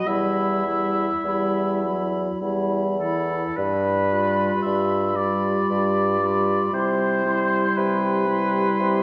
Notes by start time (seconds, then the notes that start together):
0.06 E2 G3 E4 E5 B5
0.65 G3 E4 B5
1.23 E2 G3 E4 B5
1.83 F#3 E4 B5
2.41 E2 G3 E4 B5
3.00 E3 E4 A4 B5
3.56 G2 B4
4.09 G3 F4 B5
4.62 G2 E5
5.16 G3 F4 D5 B5
5.70 G2
6.20 G3 F4 B5
6.72 C3 G3 E4 C5
6.76 C6
7.25 G3 E4 C6
7.77 C3 B4
8.27 G3 E4 C6
8.80 C3